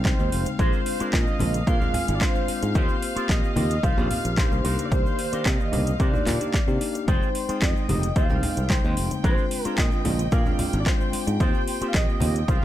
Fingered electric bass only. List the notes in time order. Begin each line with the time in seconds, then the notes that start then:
Already playing: C2
0.20 D#2
0.32 F1
0.59 A#1
1.01 muted fingered electric bass stroke
1.13 A#2
1.41 A#1
1.67 A#2
2.09 G#1
2.49 muted fingered electric bass stroke
2.63 G#2
2.75 D#2
3.16 muted fingered electric bass stroke
3.29 A#1
3.56 D#2
3.83 C2
3.98 A#1
4.25 A#1
4.52 C2
4.65 C2
4.92 C2
5.33 muted fingered electric bass stroke
5.46 C3
5.73 C2
6.00 C3
6.27 A#2
6.68 C3
7.08 F1
7.49 muted fingered electric bass stroke
7.62 F2
7.89 F1
8.16 D#2
8.30 C2
8.57 C2
8.84 D#2
8.97 F1
9.24 A#1
9.66 muted fingered electric bass stroke
9.78 A#2
10.05 A#1
10.32 A#2
10.73 G#1
11.13 muted fingered electric bass stroke
11.27 G#2
11.40 D#2
11.81 muted fingered electric bass stroke
11.94 A#1
12.21 D#2
12.48 C2